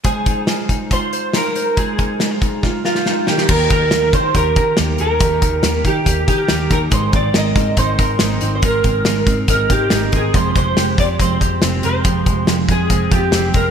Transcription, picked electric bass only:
\new Staff \with { instrumentName = "Picked electric bass" } { \clef bass \time 4/4 \key aes \lydian \tempo 4 = 140 r1 | r1 | ees,8 ees,8 ees,8 ees8 ees,8 ees8 ees,8 ees,8 | ees,8 ees,8 ees,8 ees8 ees,8 ees8 ees,8 ees,8 |
aes,,8 aes,,8 aes,,8 aes,8 aes,,8 aes,8 aes,,8 aes,,8 | aes,,8 aes,,8 aes,,8 aes,8 aes,,8 aes,8 aes,,8 aes,,8 | f,,8 f,,8 f,,8 f,8 f,,8 f,8 f,,8 f,,8 | f,,8 f,,8 f,,8 f,8 f,,8 f,8 f,,8 f,,8 | }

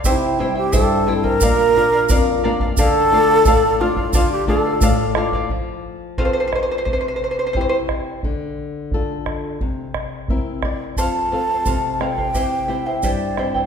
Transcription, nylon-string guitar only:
\new Staff \with { instrumentName = "Nylon-string guitar" } { \time 2/4 \key f \major \tempo 4 = 88 << { r2 | r2 | r2 | r2 |
r2 | r2 | r2 | r4 e''8 d''8 |
r2 | r2 | } \\ { c8 <g c' e'>8 g,8 <g c' e'>8 | bes,8 <bes d' f'>8 f,8 <bes d' f'>8 | d8 <a d' f'>8 a,8 <a d' f'>8 | d8 <a d' f'>8 a,8 <a d' f'>8 |
f4 <c' f' a'>4 | c4 <c' e' g'>4 | d4 <d' f' a'>4 | c4 <c' e' bes'>4 |
f,8 <c' f' a'>8 c8 <c' f' a'>8 | c8 <c' e' g'>8 g,8 <c' e' g'>8 | } >> }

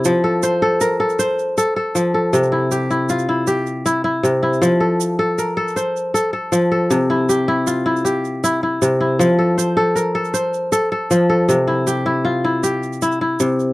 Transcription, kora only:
\new Staff \with { instrumentName = "Kora" } { \time 12/8 \key f \major \tempo 4. = 105 << { e'8 a'8 c''4 bes'4 c''4. a'4 a'8~ | a'8 e'8 g'4 f'4 g'4. e'4 e'8~ | e'8 a'4. bes'4 c''4. a'4 a'8~ | a'8 e'8 g'4 f'4 g'4. e'4 e'8~ |
e'8 a'8 c''4 bes'4 c''4. a'4 a'8~ | a'8 e'8 g'4 f'4 g'4. e'4. | } \\ { f4 r8 a'4 a'4 r8 a'4 f4 | c4 r8 e'4 e'4 r8 e'4 c4 | f4 r8 a'4 a'4 r8 a'4 f4 | c4 r8 e'4 e'4 r8 e'4 c4 |
f4 r8 a'4 a'4 r8 a'4 f4 | c4 r8 e'4 e'4 r8 e'4 c4 | } >> }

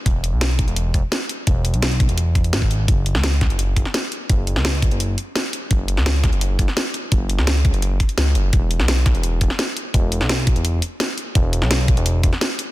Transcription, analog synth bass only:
\new Staff \with { instrumentName = "Analog synth bass" } { \clef bass \time 4/4 \key e \major \tempo 4 = 170 e,,8. b,,4 e,,8. e,,16 r4 r16 | e,,8. b,,4 e,,4~ e,,16 gis,,16 gis,,8. | fis,,8. cis,4 fis,,8. fis,,16 r4 r16 | fis,,8. cis,4 fis,,8. r4. |
fis,,8. cis,4 fis,,8. fis,,16 r4 r16 | fis,,8. cis,4 fis,,8. r8 cis,8 fis,,8 | e,,8. b,,4 e,,8. e,,16 r4 r16 | e,,8. b,,4 e,,8. r4. |
e,,8. b,,4 e,,8. e,,16 r4 r16 | }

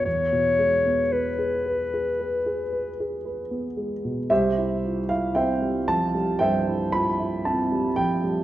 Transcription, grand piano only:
\new Staff \with { instrumentName = "Grand piano" } { \time 4/4 \key e \major \tempo 4 = 57 << { r1 | \key c \major <g' c'' e''>8. f''16 <c'' e'' g''>8 a''8 <c'' e'' g''>8 b''8 a''8 g''8 | } \\ { e,16 b,16 gis16 b16 b'16 gis'16 b'16 gis'16 b'16 gis'16 b'16 gis'16 b'16 b16 gis16 b,16 | c,16 e'16 f'16 e'16 c'16 g16 f16 g16 g,16 e'16 f'16 e'16 c'16 g16 f16 g16 | } >> }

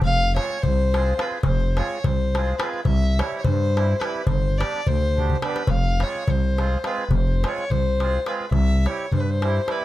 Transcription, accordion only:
\new Staff \with { instrumentName = "Accordion" } { \time 5/8 \tempo 4 = 106 r8 <aes c' f' aes'>8 r8 <aes c' f' aes'>8 <aes c' f' aes'>8 | r8 <aes c' f' aes'>8 r8 <aes c' f' aes'>8 <aes c' f' aes'>8 | r8 <g c' e' g'>8 r8 <g c' e' g'>8 <g c' e' g'>8 | r8 <g b d' g'>8 r8 <g b d' g'>8 <g b d' g'>8 |
r8 <aes c' f' aes'>8 r8 <aes c' f' aes'>8 <aes c' f' aes'>8 | r8 <aes c' f' aes'>8 r8 <aes c' f' aes'>8 <aes c' f' aes'>8 | r8 <g c' e' g'>8 r8 <g c' e' g'>8 <g c' e' g'>8 | }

